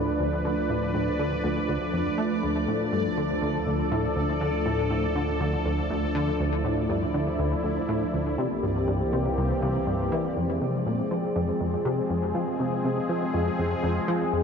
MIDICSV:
0, 0, Header, 1, 5, 480
1, 0, Start_track
1, 0, Tempo, 495868
1, 434, Time_signature, 4, 2, 24, 8
1, 13971, End_track
2, 0, Start_track
2, 0, Title_t, "Synth texture"
2, 0, Program_c, 0, 99
2, 0, Note_on_c, 0, 74, 80
2, 10041, Note_off_c, 0, 74, 0
2, 13971, End_track
3, 0, Start_track
3, 0, Title_t, "Analog synth pad"
3, 0, Program_c, 1, 89
3, 0, Note_on_c, 1, 53, 75
3, 0, Note_on_c, 1, 57, 73
3, 0, Note_on_c, 1, 62, 69
3, 0, Note_on_c, 1, 71, 90
3, 2338, Note_off_c, 1, 71, 0
3, 2352, Note_on_c, 1, 69, 84
3, 6178, Note_off_c, 1, 69, 0
3, 6192, Note_on_c, 1, 64, 85
3, 8073, Note_off_c, 1, 53, 0
3, 8073, Note_off_c, 1, 57, 0
3, 8074, Note_off_c, 1, 62, 0
3, 8111, Note_on_c, 1, 52, 78
3, 8111, Note_on_c, 1, 58, 76
3, 8111, Note_on_c, 1, 67, 91
3, 8112, Note_on_c, 1, 60, 73
3, 8117, Note_off_c, 1, 64, 0
3, 10013, Note_off_c, 1, 52, 0
3, 10013, Note_off_c, 1, 58, 0
3, 10013, Note_off_c, 1, 60, 0
3, 10013, Note_off_c, 1, 67, 0
3, 10030, Note_on_c, 1, 53, 80
3, 10030, Note_on_c, 1, 68, 93
3, 10031, Note_on_c, 1, 56, 72
3, 10032, Note_on_c, 1, 60, 73
3, 13971, Note_off_c, 1, 53, 0
3, 13971, Note_off_c, 1, 56, 0
3, 13971, Note_off_c, 1, 60, 0
3, 13971, Note_off_c, 1, 68, 0
3, 13971, End_track
4, 0, Start_track
4, 0, Title_t, "Analog synth bass"
4, 0, Program_c, 2, 38
4, 0, Note_on_c, 2, 45, 96
4, 106, Note_off_c, 2, 45, 0
4, 191, Note_on_c, 2, 38, 76
4, 420, Note_off_c, 2, 38, 0
4, 434, Note_on_c, 2, 50, 78
4, 525, Note_off_c, 2, 50, 0
4, 671, Note_on_c, 2, 45, 71
4, 900, Note_off_c, 2, 45, 0
4, 912, Note_on_c, 2, 45, 77
4, 1066, Note_off_c, 2, 45, 0
4, 1151, Note_on_c, 2, 50, 73
4, 1305, Note_off_c, 2, 50, 0
4, 1390, Note_on_c, 2, 38, 99
4, 1545, Note_off_c, 2, 38, 0
4, 1631, Note_on_c, 2, 38, 81
4, 1724, Note_off_c, 2, 38, 0
4, 1872, Note_on_c, 2, 41, 72
4, 2026, Note_off_c, 2, 41, 0
4, 2108, Note_on_c, 2, 57, 78
4, 2339, Note_off_c, 2, 57, 0
4, 2353, Note_on_c, 2, 38, 78
4, 2581, Note_off_c, 2, 38, 0
4, 2591, Note_on_c, 2, 45, 69
4, 2820, Note_off_c, 2, 45, 0
4, 2830, Note_on_c, 2, 43, 73
4, 2985, Note_off_c, 2, 43, 0
4, 3072, Note_on_c, 2, 50, 72
4, 3226, Note_off_c, 2, 50, 0
4, 3307, Note_on_c, 2, 38, 95
4, 3463, Note_off_c, 2, 38, 0
4, 3547, Note_on_c, 2, 38, 76
4, 3703, Note_off_c, 2, 38, 0
4, 3790, Note_on_c, 2, 45, 96
4, 3944, Note_off_c, 2, 45, 0
4, 4027, Note_on_c, 2, 38, 81
4, 4258, Note_off_c, 2, 38, 0
4, 4268, Note_on_c, 2, 50, 78
4, 4362, Note_off_c, 2, 50, 0
4, 4506, Note_on_c, 2, 45, 74
4, 4738, Note_off_c, 2, 45, 0
4, 4746, Note_on_c, 2, 45, 74
4, 4903, Note_off_c, 2, 45, 0
4, 4989, Note_on_c, 2, 50, 74
4, 5144, Note_off_c, 2, 50, 0
4, 5229, Note_on_c, 2, 38, 99
4, 5384, Note_off_c, 2, 38, 0
4, 5471, Note_on_c, 2, 38, 80
4, 5625, Note_off_c, 2, 38, 0
4, 5713, Note_on_c, 2, 38, 93
4, 5866, Note_off_c, 2, 38, 0
4, 5950, Note_on_c, 2, 50, 107
4, 6105, Note_off_c, 2, 50, 0
4, 6192, Note_on_c, 2, 38, 78
4, 6421, Note_off_c, 2, 38, 0
4, 6430, Note_on_c, 2, 45, 75
4, 6660, Note_off_c, 2, 45, 0
4, 6672, Note_on_c, 2, 43, 77
4, 6825, Note_off_c, 2, 43, 0
4, 6912, Note_on_c, 2, 50, 72
4, 7066, Note_off_c, 2, 50, 0
4, 7151, Note_on_c, 2, 38, 96
4, 7305, Note_off_c, 2, 38, 0
4, 7392, Note_on_c, 2, 38, 79
4, 7546, Note_off_c, 2, 38, 0
4, 7633, Note_on_c, 2, 45, 96
4, 7786, Note_off_c, 2, 45, 0
4, 7874, Note_on_c, 2, 38, 75
4, 8102, Note_off_c, 2, 38, 0
4, 8113, Note_on_c, 2, 48, 79
4, 8205, Note_off_c, 2, 48, 0
4, 8354, Note_on_c, 2, 43, 70
4, 8582, Note_off_c, 2, 43, 0
4, 8592, Note_on_c, 2, 43, 76
4, 8745, Note_off_c, 2, 43, 0
4, 8834, Note_on_c, 2, 48, 76
4, 8987, Note_off_c, 2, 48, 0
4, 9074, Note_on_c, 2, 36, 100
4, 9227, Note_off_c, 2, 36, 0
4, 9314, Note_on_c, 2, 36, 104
4, 9467, Note_off_c, 2, 36, 0
4, 9550, Note_on_c, 2, 43, 69
4, 9780, Note_off_c, 2, 43, 0
4, 9794, Note_on_c, 2, 52, 80
4, 9947, Note_off_c, 2, 52, 0
4, 10035, Note_on_c, 2, 41, 77
4, 10262, Note_off_c, 2, 41, 0
4, 10275, Note_on_c, 2, 48, 72
4, 10502, Note_off_c, 2, 48, 0
4, 10514, Note_on_c, 2, 46, 78
4, 10667, Note_off_c, 2, 46, 0
4, 10754, Note_on_c, 2, 53, 71
4, 10906, Note_off_c, 2, 53, 0
4, 10992, Note_on_c, 2, 41, 97
4, 11145, Note_off_c, 2, 41, 0
4, 11233, Note_on_c, 2, 41, 80
4, 11386, Note_off_c, 2, 41, 0
4, 11472, Note_on_c, 2, 48, 93
4, 11625, Note_off_c, 2, 48, 0
4, 11711, Note_on_c, 2, 41, 78
4, 11940, Note_off_c, 2, 41, 0
4, 11950, Note_on_c, 2, 53, 75
4, 12044, Note_off_c, 2, 53, 0
4, 12192, Note_on_c, 2, 48, 71
4, 12421, Note_off_c, 2, 48, 0
4, 12433, Note_on_c, 2, 48, 77
4, 12586, Note_off_c, 2, 48, 0
4, 12673, Note_on_c, 2, 53, 73
4, 12826, Note_off_c, 2, 53, 0
4, 12912, Note_on_c, 2, 41, 95
4, 13065, Note_off_c, 2, 41, 0
4, 13153, Note_on_c, 2, 41, 80
4, 13306, Note_off_c, 2, 41, 0
4, 13389, Note_on_c, 2, 41, 95
4, 13544, Note_off_c, 2, 41, 0
4, 13628, Note_on_c, 2, 53, 102
4, 13784, Note_off_c, 2, 53, 0
4, 13868, Note_on_c, 2, 41, 82
4, 13971, Note_off_c, 2, 41, 0
4, 13971, End_track
5, 0, Start_track
5, 0, Title_t, "Sub bass"
5, 0, Program_c, 3, 38
5, 0, Note_on_c, 3, 38, 86
5, 2329, Note_off_c, 3, 38, 0
5, 2354, Note_on_c, 3, 38, 87
5, 8090, Note_off_c, 3, 38, 0
5, 8114, Note_on_c, 3, 36, 88
5, 10010, Note_off_c, 3, 36, 0
5, 13971, End_track
0, 0, End_of_file